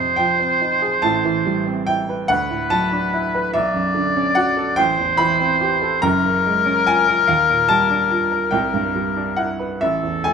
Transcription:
Already playing: F2 C3 C5 D#5
0.16 F3 G5
0.40 C4
0.61 D#4
0.82 G#4
1.02 A1 A2 A5
1.24 E3
1.46 G3
1.66 C4
1.87 E4 G5
2.09 B4
2.28 D2 B4 F#5
2.50 A2
2.70 F#3 A5
2.92 D4
3.14 E4
3.35 B4
3.53 B1 D5 E5
3.74 F#2
3.95 D3
4.16 C#4
4.35 F#4 F#5
4.57 A4
4.76 A1 C5 G5
4.98 E2
5.17 E3 B5
5.39 C4
5.61 G4
5.82 A4
6.02 F#1 F#2 A#4 A#5
6.25 C#3
6.46 G#3
6.66 C#4
6.87 F4 G#5
7.08 A#4
7.28 D#2 F5
7.50 A#2
7.68 G3 A5
7.90 D4
8.10 F4
8.31 A#4
8.51 C2 G5
8.74 G2
8.95 G3
9.16 D4
9.36 E4 F#5
9.59 B4
9.81 A1 A4 E5
10.03 E2
10.24 A3 G#5

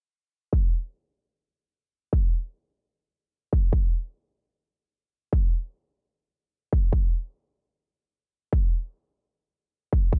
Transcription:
0.53 kick
2.13 kick
3.53 kick
3.73 kick
5.33 kick
6.73 kick
6.93 kick
8.53 kick
9.93 kick
10.13 kick

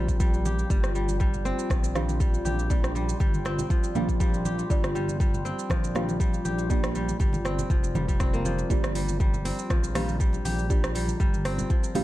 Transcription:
Already playing: A#1 F3 G3 C4 F4 D5 G5 A#5
0.09 kick, muted conga, shaker
0.20 G3, kick, shaker
0.34 muted conga, shaker
0.45 G4, high conga, shaker
0.59 muted conga, shaker
0.70 G1 G3 A#3 D4 F4 G4 D5 C6, kick, high conga, shaker
0.84 cross-stick, shaker
0.95 G3, muted conga, shaker
1.09 high conga, shaker
1.20 G3, kick, muted conga, shaker
1.34 low conga, shaker
1.45 C4, muted conga, shaker
1.59 shaker
1.70 A#1 F3, kick, cross-stick, mid tom, high conga, shaker
1.84 muted conga, shaker
1.95 G3 A#3 D4 F4 G4 F5, cross-stick, mid tom, high conga, shaker
2.09 mid tom, muted conga, shaker
2.20 G3, kick, shaker
2.34 muted conga, shaker
2.45 A#1 G4, high conga, shaker
2.59 muted conga, shaker
2.70 G3 A#3 D4 F4 G4 D5, kick, shaker
2.84 cross-stick, shaker
2.95 G3, muted conga, shaker
3.09 high conga, shaker
3.20 G1 G3, kick, muted conga, shaker
3.34 mid tom, shaker
3.45 C4, cross-stick, muted conga, shaker
3.59 low conga, shaker
3.70 F3, kick, high conga, shaker
3.84 muted conga, shaker
3.95 A#1 G3 A#3 D4 F4 G4 F5, mid tom, high conga, low conga, shaker
4.09 kick, muted conga, shaker
4.20 G3, kick, shaker
4.34 muted conga, shaker
4.45 G4, high conga, shaker
4.59 muted conga, shaker
4.70 G1 G3 A#3 D4 F4 G4 D5, kick, high conga, shaker
4.84 cross-stick, shaker
4.95 G3, muted conga, shaker
5.08 high conga, shaker
5.20 G3, kick, muted conga, shaker
5.34 low conga, shaker
5.45 C4, muted conga, shaker
5.59 shaker
5.70 A#1 F3, kick, cross-stick, mid tom, high conga, shaker
5.84 muted conga, shaker
5.95 G3 A#3 D4 F4 G4 F5, cross-stick, mid tom, high conga, shaker
6.09 mid tom, muted conga, shaker
6.20 G3, kick, shaker
6.33 muted conga, shaker
6.45 A#1 G4, high conga, shaker
6.59 muted conga, shaker
6.70 G3 A#3 D4 F4 G4 D5, kick, high conga, shaker
6.84 cross-stick, shaker
6.95 G3, muted conga, shaker
7.09 high conga, shaker
7.20 G1 G3, kick, muted conga, shaker
7.33 mid tom, low conga, shaker
7.45 C4, cross-stick, muted conga, shaker
7.59 low conga, shaker
7.70 F1 F3, kick, high conga, shaker
7.84 muted conga, shaker
7.95 G3, mid tom, high conga, low conga, shaker
8.08 G3, kick, muted conga, shaker
8.20 C4, kick, cross-stick, shaker
8.33 A#3, muted conga, shaker
8.45 F3, high conga, shaker
8.59 muted conga, shaker
8.70 G1 G3 A#3 D4 F4 G4 D5 A#5, kick, high conga, shaker
8.84 cross-stick, shaker
8.95 G3, open hi-hat, muted conga, shaker
9.09 high conga, shaker
9.20 G3, kick, muted conga, shaker
9.34 low conga, shaker
9.45 C4, open hi-hat, muted conga, shaker
9.59 shaker
9.70 A#1 F3, kick, cross-stick, mid tom, high conga, shaker
9.84 muted conga, shaker
9.95 G3 A#3 D4 F4 G4 F5, cross-stick, open hi-hat, mid tom, high conga, shaker
10.09 mid tom, muted conga, shaker
10.20 G3, kick, shaker
10.33 muted conga, shaker
10.45 A#1 G4, open hi-hat, high conga, shaker
10.58 muted conga, shaker
10.70 G3 A#3 D4 F4 G4 D5, kick, shaker
10.84 cross-stick, shaker
10.95 G3, open hi-hat, muted conga, shaker
11.08 high conga, shaker
11.20 G1 G3, kick, muted conga, shaker
11.34 mid tom, shaker
11.45 C4, cross-stick, open hi-hat, muted conga, shaker
11.59 low conga, shaker
11.70 F3, kick, high conga, shaker
11.84 muted conga, shaker
11.95 A#1 G3 A#3 D4 F4 G4 F5, open hi-hat, mid tom, high conga, low conga, shaker

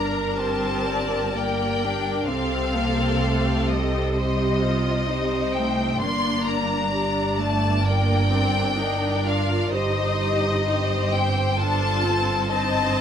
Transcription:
Already playing: G1 G2 D4 A#4 D5 A#5
0.37 C4 G4 C5 A5
0.86 D5
1.33 A#3 G4 D5 G5
1.82 D4
2.28 C2 C3 C4 G4 A4 C5 F5
2.75 A#3
3.22 A3
3.69 G3 D#5
4.15 G4 C5 D#5
4.62 F4
5.08 G3 D#4 C5
5.54 A3 G5
6.01 G1 G2 A#3 D4 D5 C6
6.46 A#5
6.93 G3 D5
7.39 A3 A5
7.85 A#3 D4 A#4 G5
8.31 C4
8.77 D4 D#4 A#4 D5
9.26 F4 F5
9.72 G1 G2 D#4 G4 C5 D#5
10.21 G4
10.66 D#4 G4 C5
11.12 C4 G5
11.59 D4 F4 A4 A5
12.05 C4
12.50 C4 D#4 C5 D#5 A5

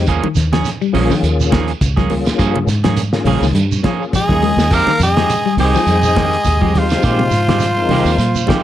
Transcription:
0.06 D#2 F3 A#3 C#4 G#4, kick, closed hi-hat, shekere
0.24 D#3, muted fingered electric bass stroke, high conga
0.35 D#2, snare, closed hi-hat, shekere
0.53 F3 C#4 G#4, muted clean electric guitar stroke, snare, closed hi-hat, low conga
0.65 snare, closed hi-hat, shekere
0.81 G3, shekere
0.93 A#1 F3 A#3 C#4 F4 G#4, open hi-hat, high conga, low conga, shekere
1.10 D#3 F3, shekere
1.23 D#2, closed hi-hat, shekere
1.40 shekere
1.52 D#3 F3 A#3 C#4 G#4, kick, snare, closed hi-hat, high conga
1.68 closed hi-hat, shekere
1.81 C#2, kick, closed hi-hat, shekere
1.97 F3 A#3 C#4 G#4, kick, snare, high conga
2.10 A#3 C#4 F4 G#4, open hi-hat, high conga, low conga, shekere
2.26 snare, closed hi-hat, shekere
2.38 G2 F3 A#3 C#4 G#4, kick, snare, closed hi-hat, shekere
2.55 C#3, high conga
2.67 G#2, snare, closed hi-hat, shekere
2.84 F3 A#3 C#4 G#4, snare, closed hi-hat, high conga, low conga
2.97 closed hi-hat, shekere
3.13 A#3 C#4 F4 G#4, snare, shekere
3.25 A#1 C#3 F3 A#3 C#4 G#4, open hi-hat, high conga, low conga, shekere
3.41 C#2 D#3, snare, shekere
3.54 G2, closed hi-hat, high conga, shekere
3.72 shekere
3.82 F3 A#3 C#4 F4 G#4, kick, snare, closed hi-hat, high conga
3.99 A#3 C#4 F4 G#4, shekere
4.13 F3 G#3 G#4 D#5, kick, closed hi-hat, shekere
4.28 D#2 A#3 C#4 F4 G#4, kick, snare, high conga
4.42 G#3, open hi-hat, low conga, shekere
4.57 D#2, snare, shekere
4.71 F2 D#3 G#3 A#3 C4 G4 A#4, kick, closed hi-hat, shekere
4.75 F5
4.87 D#3, muted fingered electric bass stroke, snare, high conga
5.00 F2 G#3 G#4 D#5, closed hi-hat, shekere
5.17 F3 G#3 C4 G4, snare, closed hi-hat
5.30 closed hi-hat, shekere
5.46 G3, shekere
5.57 C2 D#3 G#3 C4 D#4 G4 G#4 G5, open hi-hat, high conga, low conga, shekere
5.62 D#5
5.74 F3, shekere
5.87 F2, closed hi-hat, high conga, shekere
6.03 shekere
6.16 D#3 G#3 C4 G4, kick, snare, closed hi-hat, high conga
6.31 closed hi-hat, shekere
6.44 D#2, kick, closed hi-hat, shekere
6.61 F3 G#3 C4 G4, kick, high conga
6.74 F3 G#3 C4 D#4 F4 G4, snare, open hi-hat, high conga, low conga, shekere
6.79 C5
6.89 snare, closed hi-hat, shekere
7.02 A#2 D#3 G#3 C4 G4, kick, closed hi-hat, shekere
7.19 C3, high conga
7.31 G#2, snare, closed hi-hat, shekere
7.48 D#3 G#3 C4 G4, snare, closed hi-hat, high conga, low conga
7.59 snare, closed hi-hat, shekere
7.76 G#3 C4 D#4 A#4, shekere
7.89 C2 C3 D#3 G#3 C4 G4, open hi-hat, high conga, low conga, shekere
8.05 D#2, shekere
8.18 A#2, closed hi-hat, high conga, shekere
8.35 shekere
8.47 D#3 F3 G#3 C4 D#4 G4, kick, snare, closed hi-hat, high conga

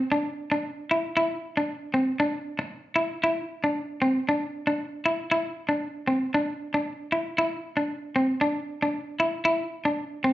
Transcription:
0.12 D4
0.52 D4
0.91 E4
1.17 E4
1.57 D4
1.94 C4
2.20 D4
2.59 muted clean electric guitar stroke
2.96 E4
3.24 E4
3.64 D4
4.02 C4
4.29 D4
4.67 D4
5.06 E4
5.31 E4
5.69 D4
6.07 C4
6.34 D4
6.74 D4
7.12 E4
7.38 E4
7.77 D4
8.16 C4
8.41 D4
8.82 D4
9.20 E4
9.45 E4
9.85 D4
10.24 C4

